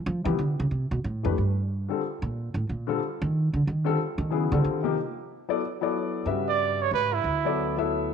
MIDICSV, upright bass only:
0, 0, Header, 1, 2, 480
1, 0, Start_track
1, 0, Tempo, 326975
1, 553, Time_signature, 3, 2, 24, 8
1, 11947, End_track
2, 0, Start_track
2, 0, Title_t, "Upright bass"
2, 0, Program_c, 0, 32
2, 92, Note_on_c, 0, 53, 106
2, 363, Note_off_c, 0, 53, 0
2, 372, Note_on_c, 0, 52, 99
2, 546, Note_off_c, 0, 52, 0
2, 567, Note_on_c, 0, 50, 84
2, 854, Note_off_c, 0, 50, 0
2, 874, Note_on_c, 0, 49, 94
2, 1034, Note_off_c, 0, 49, 0
2, 1043, Note_on_c, 0, 48, 75
2, 1332, Note_off_c, 0, 48, 0
2, 1339, Note_on_c, 0, 47, 88
2, 1509, Note_off_c, 0, 47, 0
2, 1532, Note_on_c, 0, 45, 87
2, 1817, Note_off_c, 0, 45, 0
2, 1829, Note_on_c, 0, 41, 86
2, 1994, Note_off_c, 0, 41, 0
2, 2024, Note_on_c, 0, 43, 72
2, 2737, Note_off_c, 0, 43, 0
2, 3260, Note_on_c, 0, 46, 89
2, 3704, Note_off_c, 0, 46, 0
2, 3732, Note_on_c, 0, 45, 89
2, 3905, Note_off_c, 0, 45, 0
2, 3954, Note_on_c, 0, 46, 73
2, 4381, Note_off_c, 0, 46, 0
2, 4720, Note_on_c, 0, 51, 101
2, 5154, Note_off_c, 0, 51, 0
2, 5189, Note_on_c, 0, 50, 85
2, 5353, Note_off_c, 0, 50, 0
2, 5393, Note_on_c, 0, 51, 85
2, 5819, Note_off_c, 0, 51, 0
2, 6136, Note_on_c, 0, 51, 91
2, 6580, Note_off_c, 0, 51, 0
2, 6632, Note_on_c, 0, 50, 97
2, 6794, Note_off_c, 0, 50, 0
2, 6818, Note_on_c, 0, 51, 79
2, 7251, Note_off_c, 0, 51, 0
2, 9184, Note_on_c, 0, 43, 76
2, 10088, Note_off_c, 0, 43, 0
2, 10148, Note_on_c, 0, 44, 79
2, 10595, Note_off_c, 0, 44, 0
2, 10627, Note_on_c, 0, 38, 77
2, 11947, Note_off_c, 0, 38, 0
2, 11947, End_track
0, 0, End_of_file